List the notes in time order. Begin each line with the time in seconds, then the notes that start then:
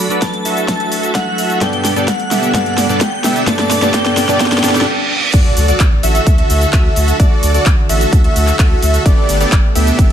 Already playing: F#3 D4 A4 B5, riser
0.09 F#3 A3 D4 F#4 A4 B4 D5, closed hi-hat, shaker
0.22 A5, kick, snare, closed hi-hat, shaker
0.34 closed hi-hat
0.45 F#4 A4 E5, open hi-hat, shaker
0.57 closed hi-hat, shaker
0.68 A5, kick, snare, closed hi-hat, shaker
0.80 F#4 A4 E5, closed hi-hat
0.92 open hi-hat, shaker
1.03 closed hi-hat, shaker
1.15 A4 E5 F#5, kick, snare, closed hi-hat, shaker
1.38 open hi-hat, shaker
1.50 closed hi-hat, shaker
1.61 G2 G3 B3 D4 G4 A4 D5 G5, kick, snare, closed hi-hat, shaker
1.73 closed hi-hat
1.85 snare, open hi-hat, shaker
1.96 G2 G3 B3 D4 G4 A4 D5, closed hi-hat, shaker
2.08 F#5, kick, snare, closed hi-hat, shaker
2.20 closed hi-hat
2.31 B3 D4 G4 A4 E5, snare, open hi-hat, shaker
2.43 closed hi-hat, shaker
2.54 G2 G3 B3 D4 G4 A4 D5 F#5, kick, snare, closed hi-hat, shaker
2.66 closed hi-hat
2.78 snare, open hi-hat, shaker
2.89 G2 G3 B3 D4 G4 A4 D5, closed hi-hat, shaker
3.01 G5, kick, snare, closed hi-hat, shaker
3.24 B3 D4 G4 A4 E5, snare, open hi-hat, shaker
3.36 closed hi-hat, shaker
3.47 G2 G3 B3 D4 A4 D5 A5, kick, snare, closed hi-hat, shaker
3.59 snare, closed hi-hat
3.71 snare, open hi-hat, shaker
3.82 G2 G3 B3 D4 G4 A4 D5, snare, closed hi-hat, shaker
3.93 G2 G3 B3 D4 G4 A4 D5 G5, kick, snare, closed hi-hat, shaker
4.06 snare, closed hi-hat
4.17 snare, open hi-hat, shaker
4.28 G2 G3 B3 D4 G4 A4 D5, snare, closed hi-hat, shaker
4.40 G2 G3 B3 D4 G4 A4 D5 G5, kick, snare, closed hi-hat, reverse cymbal, shaker
4.46 snare
4.52 snare, closed hi-hat
4.58 snare
4.63 G2 G3 B3 D4 G4 A4 D5, snare, open hi-hat, shaker
4.69 snare
4.75 snare, closed hi-hat, shaker
4.81 snare
5.33 D2 D3 A3 F#4 A4 D5, kick, closed hi-hat, crash, impact, shaker
5.57 D2, open hi-hat, shaker
5.68 F#4 A4 D5, closed hi-hat, shaker
5.80 D2, kick, clap, closed hi-hat, shaker
6.03 A1 F#4 A4 E5, open hi-hat, shaker
6.15 closed hi-hat, shaker
6.27 D2, kick, closed hi-hat, shaker
6.38 F#4 A4 E5, closed hi-hat
6.50 D2, open hi-hat, shaker
6.61 closed hi-hat, shaker
6.73 D2 F#4 E5, kick, clap, closed hi-hat, shaker
6.96 D2, open hi-hat, shaker
7.08 closed hi-hat, shaker
7.20 D2 F#4 D5, kick, closed hi-hat, shaker
7.43 D2, open hi-hat, shaker
7.54 F#4 A4 D5, closed hi-hat, shaker
7.66 D2, kick, clap, closed hi-hat, shaker
7.89 A1 F#4 A4 E5, open hi-hat, shaker
8.01 closed hi-hat, shaker
8.13 D2, kick, closed hi-hat, shaker
8.24 F#4 A4 E5, closed hi-hat
8.36 D2, open hi-hat, shaker
8.47 clap, closed hi-hat, shaker
8.59 D2 F#4 A4 E5, kick, clap, closed hi-hat, shaker
8.82 D2, open hi-hat, shaker
8.94 closed hi-hat, shaker
9.06 G1 B2 B3 D4 G4 A4 D5, kick, closed hi-hat, shaker
9.29 G1, open hi-hat, shaker
9.41 B3 D4 G4 A4 D5, closed hi-hat, shaker
9.52 G1, kick, clap, closed hi-hat, shaker
9.75 D2 B3 D4 G4 A4 E5, open hi-hat, shaker
9.87 closed hi-hat, shaker
9.99 G1, kick, closed hi-hat, shaker